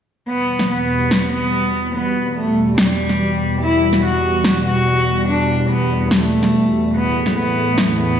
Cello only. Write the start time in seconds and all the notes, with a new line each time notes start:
0.28 B3
0.70 B3
1.32 B3
1.95 B3
2.36 A3
2.78 G3
3.61 E4
4.03 F#4
4.65 F#4
5.28 D4
5.69 B3
6.11 A3
6.94 B3
7.36 B3
7.99 B3